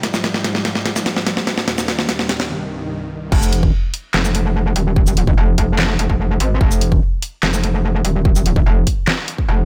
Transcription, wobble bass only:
0, 0, Header, 1, 2, 480
1, 0, Start_track
1, 0, Key_signature, -4, "minor"
1, 0, Tempo, 410959
1, 39, Time_signature, 4, 2, 24, 8
1, 11271, End_track
2, 0, Start_track
2, 0, Title_t, "Wobble bass"
2, 0, Program_c, 0, 39
2, 3878, Note_on_c, 0, 29, 97
2, 4339, Note_off_c, 0, 29, 0
2, 4838, Note_on_c, 0, 29, 97
2, 5539, Note_off_c, 0, 29, 0
2, 5559, Note_on_c, 0, 27, 95
2, 6260, Note_off_c, 0, 27, 0
2, 6278, Note_on_c, 0, 29, 100
2, 6500, Note_off_c, 0, 29, 0
2, 6518, Note_on_c, 0, 29, 94
2, 6979, Note_off_c, 0, 29, 0
2, 6998, Note_on_c, 0, 29, 98
2, 7101, Note_off_c, 0, 29, 0
2, 7120, Note_on_c, 0, 29, 100
2, 7459, Note_off_c, 0, 29, 0
2, 7478, Note_on_c, 0, 32, 95
2, 7699, Note_off_c, 0, 32, 0
2, 7718, Note_on_c, 0, 29, 98
2, 8179, Note_off_c, 0, 29, 0
2, 8678, Note_on_c, 0, 29, 98
2, 9380, Note_off_c, 0, 29, 0
2, 9397, Note_on_c, 0, 27, 94
2, 10099, Note_off_c, 0, 27, 0
2, 10118, Note_on_c, 0, 29, 97
2, 10339, Note_off_c, 0, 29, 0
2, 11079, Note_on_c, 0, 29, 97
2, 11271, Note_off_c, 0, 29, 0
2, 11271, End_track
0, 0, End_of_file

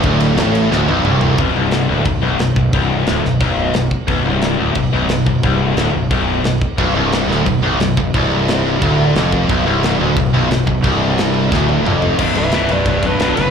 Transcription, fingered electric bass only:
0, 0, Header, 1, 2, 480
1, 0, Start_track
1, 0, Tempo, 337648
1, 58, Time_signature, 4, 2, 24, 8
1, 19199, End_track
2, 0, Start_track
2, 0, Title_t, "Fingered electric bass"
2, 0, Program_c, 0, 33
2, 54, Note_on_c, 0, 26, 91
2, 501, Note_off_c, 0, 26, 0
2, 534, Note_on_c, 0, 33, 96
2, 981, Note_off_c, 0, 33, 0
2, 1014, Note_on_c, 0, 26, 100
2, 1237, Note_off_c, 0, 26, 0
2, 1244, Note_on_c, 0, 23, 92
2, 1472, Note_off_c, 0, 23, 0
2, 1484, Note_on_c, 0, 24, 104
2, 1934, Note_off_c, 0, 24, 0
2, 1966, Note_on_c, 0, 23, 101
2, 2193, Note_off_c, 0, 23, 0
2, 2216, Note_on_c, 0, 24, 98
2, 2660, Note_off_c, 0, 24, 0
2, 2708, Note_on_c, 0, 26, 99
2, 2909, Note_off_c, 0, 26, 0
2, 2918, Note_on_c, 0, 23, 84
2, 3147, Note_off_c, 0, 23, 0
2, 3165, Note_on_c, 0, 23, 100
2, 3391, Note_off_c, 0, 23, 0
2, 3408, Note_on_c, 0, 23, 83
2, 3629, Note_off_c, 0, 23, 0
2, 3637, Note_on_c, 0, 23, 76
2, 3867, Note_off_c, 0, 23, 0
2, 3883, Note_on_c, 0, 24, 98
2, 4332, Note_off_c, 0, 24, 0
2, 4363, Note_on_c, 0, 26, 96
2, 4589, Note_off_c, 0, 26, 0
2, 4619, Note_on_c, 0, 23, 84
2, 4838, Note_off_c, 0, 23, 0
2, 4844, Note_on_c, 0, 23, 92
2, 5293, Note_off_c, 0, 23, 0
2, 5336, Note_on_c, 0, 23, 89
2, 5556, Note_off_c, 0, 23, 0
2, 5798, Note_on_c, 0, 23, 98
2, 6027, Note_off_c, 0, 23, 0
2, 6055, Note_on_c, 0, 24, 103
2, 6499, Note_off_c, 0, 24, 0
2, 6537, Note_on_c, 0, 26, 95
2, 6752, Note_off_c, 0, 26, 0
2, 6760, Note_on_c, 0, 23, 85
2, 6988, Note_off_c, 0, 23, 0
2, 7010, Note_on_c, 0, 23, 94
2, 7234, Note_off_c, 0, 23, 0
2, 7242, Note_on_c, 0, 23, 84
2, 7469, Note_off_c, 0, 23, 0
2, 7486, Note_on_c, 0, 23, 83
2, 7711, Note_off_c, 0, 23, 0
2, 7721, Note_on_c, 0, 24, 91
2, 8172, Note_off_c, 0, 24, 0
2, 8208, Note_on_c, 0, 26, 96
2, 8433, Note_off_c, 0, 26, 0
2, 8442, Note_on_c, 0, 23, 87
2, 8665, Note_off_c, 0, 23, 0
2, 8673, Note_on_c, 0, 23, 97
2, 9128, Note_off_c, 0, 23, 0
2, 9140, Note_on_c, 0, 23, 82
2, 9378, Note_off_c, 0, 23, 0
2, 9639, Note_on_c, 0, 23, 88
2, 9839, Note_off_c, 0, 23, 0
2, 9848, Note_on_c, 0, 24, 98
2, 10315, Note_off_c, 0, 24, 0
2, 10341, Note_on_c, 0, 26, 95
2, 10579, Note_off_c, 0, 26, 0
2, 10614, Note_on_c, 0, 23, 83
2, 10823, Note_off_c, 0, 23, 0
2, 10831, Note_on_c, 0, 23, 94
2, 11065, Note_off_c, 0, 23, 0
2, 11088, Note_on_c, 0, 23, 80
2, 11314, Note_off_c, 0, 23, 0
2, 11331, Note_on_c, 0, 23, 79
2, 11556, Note_off_c, 0, 23, 0
2, 11573, Note_on_c, 0, 24, 97
2, 12477, Note_off_c, 0, 24, 0
2, 12533, Note_on_c, 0, 26, 95
2, 12980, Note_off_c, 0, 26, 0
2, 13008, Note_on_c, 0, 29, 97
2, 13458, Note_off_c, 0, 29, 0
2, 13492, Note_on_c, 0, 23, 96
2, 13716, Note_off_c, 0, 23, 0
2, 13722, Note_on_c, 0, 24, 98
2, 14175, Note_off_c, 0, 24, 0
2, 14201, Note_on_c, 0, 26, 99
2, 14431, Note_off_c, 0, 26, 0
2, 14444, Note_on_c, 0, 23, 87
2, 14673, Note_off_c, 0, 23, 0
2, 14700, Note_on_c, 0, 23, 97
2, 14921, Note_off_c, 0, 23, 0
2, 14934, Note_on_c, 0, 23, 80
2, 15158, Note_off_c, 0, 23, 0
2, 15169, Note_on_c, 0, 23, 77
2, 15395, Note_off_c, 0, 23, 0
2, 15407, Note_on_c, 0, 24, 101
2, 16314, Note_off_c, 0, 24, 0
2, 16368, Note_on_c, 0, 26, 96
2, 16818, Note_off_c, 0, 26, 0
2, 16835, Note_on_c, 0, 29, 93
2, 17291, Note_off_c, 0, 29, 0
2, 17327, Note_on_c, 0, 23, 90
2, 17535, Note_off_c, 0, 23, 0
2, 17570, Note_on_c, 0, 23, 85
2, 17777, Note_off_c, 0, 23, 0
2, 17813, Note_on_c, 0, 23, 86
2, 18019, Note_off_c, 0, 23, 0
2, 18057, Note_on_c, 0, 23, 88
2, 18262, Note_off_c, 0, 23, 0
2, 18272, Note_on_c, 0, 23, 95
2, 18487, Note_off_c, 0, 23, 0
2, 18518, Note_on_c, 0, 23, 86
2, 18731, Note_off_c, 0, 23, 0
2, 18767, Note_on_c, 0, 23, 93
2, 18976, Note_off_c, 0, 23, 0
2, 19015, Note_on_c, 0, 30, 87
2, 19199, Note_off_c, 0, 30, 0
2, 19199, End_track
0, 0, End_of_file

